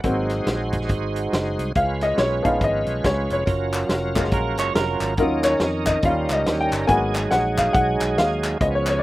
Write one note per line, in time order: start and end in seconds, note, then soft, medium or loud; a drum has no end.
0.00 0.40 G#1 loud
0.00 1.72 F#3 medium
0.00 1.72 A#3 soft
0.00 1.72 D#4 medium
0.00 1.72 C5 medium
0.00 0.26 F#5 loud
0.00 closed hi-hat medium
0.04 1.73 G#3 medium
0.04 1.72 C4 medium
0.04 1.72 F#4 medium
0.04 kick loud
0.30 snare soft
0.30 closed hi-hat medium
0.46 0.89 A#1 medium
0.46 snare loud
0.46 closed hi-hat medium
0.73 kick medium
0.73 closed hi-hat medium
0.81 snare soft
0.89 1.26 G#1 medium
0.89 kick loud
0.89 closed hi-hat medium
1.16 closed hi-hat medium
1.33 1.55 F#1 medium
1.33 snare loud
1.33 closed hi-hat medium
1.58 1.73 C2 medium
1.58 closed hi-hat medium
1.75 2.12 C#2 medium
1.75 3.44 G#3 medium
1.75 3.44 C#4 medium
1.75 3.44 F4 medium
1.75 3.44 B4 medium
1.75 2.03 F5 loud
1.75 kick medium
1.75 closed hi-hat medium
2.01 2.18 D#5 medium
2.01 snare soft
2.01 closed hi-hat medium
2.18 2.40 B1 medium
2.18 2.46 C#5 medium
2.18 snare loud
2.18 closed hi-hat medium
2.43 2.59 A#1 medium
2.43 3.42 F3 soft
2.43 3.42 B3 soft
2.43 3.43 D#4 soft
2.43 2.62 F5 medium
2.43 kick medium
2.43 closed hi-hat medium
2.61 2.83 G#1 medium
2.61 3.07 D#5 medium
2.61 kick loud
2.61 closed hi-hat medium
2.86 3.01 B1 medium
2.86 closed hi-hat medium
3.04 3.27 C#2 medium
3.04 3.31 C#5 medium
3.04 kick medium
3.04 snare loud
3.04 closed hi-hat medium
3.30 3.44 F1 medium
3.30 3.72 C#5 medium
3.30 closed hi-hat medium
3.46 3.84 F#1 medium
3.46 5.14 F#3 medium
3.46 5.14 C#4 medium
3.46 5.15 F4 medium
3.46 5.15 A#4 medium
3.46 kick loud
3.46 closed hi-hat medium
3.73 clap medium
3.73 closed hi-hat medium
3.89 4.32 F1 medium
3.89 snare loud
3.89 closed hi-hat medium
4.15 5.14 G#3 soft
4.15 5.15 A#3 soft
4.15 5.15 F4 medium
4.15 kick medium
4.15 clap medium
4.15 closed hi-hat medium
4.24 snare soft
4.31 4.58 A#1 medium
4.31 4.58 A#4 medium
4.31 kick loud
4.31 closed hi-hat medium
4.57 4.73 F#1 medium
4.57 4.75 C#5 medium
4.57 clap medium
4.57 closed hi-hat medium
4.75 4.97 F1 medium
4.75 5.16 A#4 medium
4.75 snare loud
4.75 closed hi-hat loud
5.00 5.15 G#1 medium
5.00 clap medium
5.00 closed hi-hat medium
5.17 5.55 D#2 loud
5.17 6.03 D#3 medium
5.17 5.49 F#3 medium
5.17 5.49 C#4 soft
5.17 6.02 C#4 medium
5.17 6.03 D#4 medium
5.17 5.50 F4 medium
5.17 6.02 A#4 medium
5.17 5.45 A#4 medium
5.17 kick loud
5.17 closed hi-hat medium
5.43 5.88 C#5 loud
5.43 snare soft
5.43 clap medium
5.43 closed hi-hat medium
5.60 5.97 F2 loud
5.60 snare loud
5.60 closed hi-hat medium
5.86 6.02 D#5 medium
5.86 kick medium
5.86 clap loud
5.86 closed hi-hat medium
6.02 6.26 D#2 loud
6.02 6.35 G3 medium
6.02 6.88 G3 medium
6.02 6.35 C#4 medium
6.02 6.88 C#4 medium
6.02 6.89 D#4 medium
6.02 6.36 F4 medium
6.02 6.88 A#4 medium
6.02 6.31 F5 loud
6.02 kick loud
6.02 closed hi-hat medium
6.29 6.44 C#2 medium
6.29 6.62 D#5 medium
6.29 clap medium
6.29 closed hi-hat medium
6.46 6.68 D#2 medium
6.46 snare loud
6.46 closed hi-hat medium
6.61 6.87 G5 medium
6.71 6.86 G1 medium
6.71 clap medium
6.71 closed hi-hat medium
6.86 7.26 G#1 loud
6.86 7.19 A#3 medium
6.86 7.19 B3 soft
6.86 8.58 D#4 medium
6.86 7.20 F#4 medium
6.86 7.33 G#5 loud
6.86 kick loud
6.86 closed hi-hat medium
6.90 8.58 F#3 medium
6.90 8.58 G#3 medium
6.90 8.58 G#4 medium
7.14 clap medium
7.14 closed hi-hat medium
7.31 7.68 A#1 loud
7.31 7.61 F#5 medium
7.31 snare medium
7.31 closed hi-hat medium
7.58 7.74 F5 medium
7.58 kick medium
7.58 clap loud
7.58 closed hi-hat medium
7.73 7.97 B1 loud
7.73 8.18 F#5 medium
7.73 kick loud
7.73 closed hi-hat medium
8.01 8.15 B1 medium
8.01 clap medium
8.01 closed hi-hat medium
8.18 8.54 D#2 medium
8.18 8.62 F5 medium
8.18 snare loud
8.18 closed hi-hat medium
8.44 clap medium
8.44 closed hi-hat medium
8.60 9.03 C#2 loud
8.60 9.03 F3 medium
8.60 9.03 B3 medium
8.60 9.03 C#4 medium
8.60 9.03 G#4 medium
8.60 8.66 D#5 medium
8.60 kick loud
8.60 closed hi-hat medium
8.75 8.88 C#5 medium
8.86 9.00 C#5 medium
8.86 snare soft
8.86 clap loud
8.86 closed hi-hat medium
8.99 9.03 D5 medium